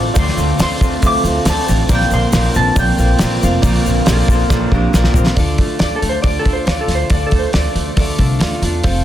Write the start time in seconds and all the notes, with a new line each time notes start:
Already playing: D3 A3 C4 F4 A4 D6
0.14 D2 D3 A3 C4 F4 A4 C5 D5, kick, open hi-hat, shaker
0.19 F4 C6
0.28 snare
0.36 D2 A3 C4 F4, shaker
0.58 D2 D3 A3 C4 F4 A4 C5 D5, snare, open hi-hat, shaker
0.62 C6
0.80 D2 A3 C4 F4, kick, shaker
1.01 D2 D3 A3 C4 F4 A4 C5 E5, kick, open hi-hat, shaker
1.06 D6
1.23 D2 C4 F4 A4, shaker
1.28 A3
1.45 D2 A3 C4 F4 A4 C5 D5, snare, open hi-hat, shaker
1.49 F4 A5
1.66 A1 C4 F4 A4, shaker
1.89 A#1 A#2 D3 A#3 C4 F4 A#4 C5 D5, kick, open hi-hat, shaker
1.95 G5
2.01 snare
2.11 A#1 A#3 C4 F4 C6, shaker
2.31 A#1 D3 A#3 C4 F4 A#4 C5 D5, snare, open hi-hat, shaker
2.35 A#4
2.54 A#1 A#3 C4 F4 A5, shaker
2.75 A#1 A#2 D3 A#3 C4 F4 A#4 C5 D5, kick, open hi-hat, shaker
2.79 G5
2.97 A#1 A#3 C4 F4 A#4, shaker
3.19 A#1 A#3 C4 F4 A#4 C5 D5, snare, open hi-hat, shaker
3.23 F4 A#4
3.41 F1 A#3 C4 F4 A#4 F5, shaker
3.62 A#1 A#2 D3 A#3 C4 F4 A#4 C5 D5, kick, open hi-hat, shaker
3.85 A#1 A#3 C4 F4, shaker
4.05 A#1 D3 A#3 C4 F4 A4 A#4 C5 D5, snare, open hi-hat, shaker
4.09 C4 F4 A#4
4.28 A#1 A#3 C4 F4 A4, kick, shaker
4.49 A#1 A#2 D3 A#3 C4 F4 A4 A#4 C5 D5, kick, snare, shaker
4.72 A#1 A#3 C4 D4 F4 G4 A#4, kick
4.77 A#3
4.93 A#1 D3 A#3 C4 F4 A#4 C5 D5, snare, shaker
5.04 snare
5.14 A#1 C4 F4 A#4, floor tom, shaker
5.18 A#3
5.27 snare
5.35 D2 D3 A3 D4 F4 A4 D5, kick, open hi-hat
5.40 F4
5.58 D3 A3 D4 F4 A4, kick, open hi-hat
5.79 D2 A3 D4 F4 A4 D5, snare, open hi-hat
5.96 A4
6.02 D2 A3, open hi-hat
6.09 C5
6.22 D2 D3 A3 D4 F4 A4 D5, kick, open hi-hat
6.39 A4
6.45 D2 D4, kick, open hi-hat
6.53 C5
6.66 D2 A3 D4 F4 A4 D5 F5, snare, open hi-hat
6.81 A4
6.88 D2 D4, snare, open hi-hat
6.95 C5
7.10 D2 D3 A3 D4 F4 A4 D5, kick, open hi-hat
7.27 A4
7.31 D2 A3 D4 F4 A4, kick, open hi-hat
7.39 C5
7.53 D2 D3 A3 D4 F4 A4 D5, snare, open hi-hat
7.75 D2 A3, open hi-hat
7.96 D2 D3 A3 D4 F4 A4 D5, kick, open hi-hat
8.18 C2 D4, kick, open hi-hat
8.39 D2 A3 D4 F4 A4 D5, snare, open hi-hat
8.62 E2 D4 F4 A4, open hi-hat
8.83 F1 F2 F3 A3 C4 F4 A4 C5, kick, open hi-hat